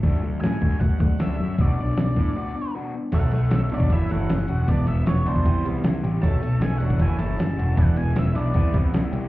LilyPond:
<<
  \new Staff \with { instrumentName = "Lead electric guitar" } { \time 4/4 \key b \dorian \tempo 4 = 155 r4 gis''4 fis''8 fis''8 e''4 | d''2. r4 | fis''4 e''8 d''8 e''8 fis''4. | d''8 e''8 cis''8 c''4 r4. |
a''4 gis''8 fis''8 gis''8 a''4. | fis''8 gis''8 e''8 d''4 r4. | }
  \new Staff \with { instrumentName = "Overdriven electric guitar" } { \time 4/4 \key b \dorian <fis a d'>8 <fis a>8 <fis a>8 <fis a d'>8 <fis a>8 <fis a>8 <fis a d'>8 <fis a>8 | <b d' fis'>8 <b d'>8 <b d'>8 <b d'>8 <b d' fis'>8 <b d'>8 <b d' fis'>8 <b d'>8 | a8 a8 a8 d'8 e8 a8 cis'8 fis'8 | b8 b8 b8 d'8 e8 b8 e'8 g'8 |
a8 a8 a8 d'8 e8 a8 cis'8 fis'8 | e8 b8 e8 d'8 e8 b8 e'8 g'8 | }
  \new Staff \with { instrumentName = "Clean electric guitar" } { \clef bass \time 4/4 \key b \dorian r1 | r1 | <b, fis a>8 <b, fis>8 <b, fis>8 <b, fis a>8 <fis a e'>8 <fis a e'>8 <fis a>8 <fis a>8 | <e b d'>8 <e b>8 <e b>8 <e b d'>8 <c g b>8 <c g b>8 g8 <c g>8 |
<b, fis a>8 <b, fis>8 <b, fis>8 <b, fis a>8 <fis a e'>8 <fis a e'>8 <fis a>8 <fis a>8 | <e b d'>8 <e b>8 <e b>8 <e b d'>8 <c g b>8 <c g b>8 <c g>8 <c g>8 | }
  \new Staff \with { instrumentName = "Picked electric bass" } { \clef bass \time 4/4 \key b \dorian d,8 d,8 a,8 d,8 fis,8 d,8 d,8 fis,8 | b,,8 b,,8 b,,8 a,8 r2 | b,,8 b,,8 b,,8 b,,8 fis,,8 fis,,8 fis,,8 e,,8 | e,,8 e,,8 e,,8 cis,8 c,8 c,8 c,8 a,,8 |
b,,8 b,,8 b,,8 e,,8 fis,,8 fis,,8 fis,,8 e,,8 | e,,8 e,,8 e,,8 b,,8 c,8 c,8 c,8 c,8 | }
  \new DrumStaff \with { instrumentName = "Drums" } \drummode { \time 4/4 <hho bd>4 <hho sn>8 bd8 <hho bd>8 bd8 <hho sn>4 | <hho bd>4 <hho sn>8 bd8 r4 r4 | <cymc hh bd>8 hh8 <hh sn>8 hh16 bd16 <hh bd>8 hh8 <hh sn>8 hh8 | <hh bd>8 hh8 <hh sn>8 hh16 bd16 <hh bd>8 hh8 <hh sn>8 hh8 |
<hh bd>8 hh8 <hh sn>8 hh16 bd16 <hh bd>8 hh8 <hh sn>8 hh8 | <hh bd>8 hh8 <hh sn>8 hh8 <hh bd>8 <hh bd>8 <hh sn>8 hh8 | }
>>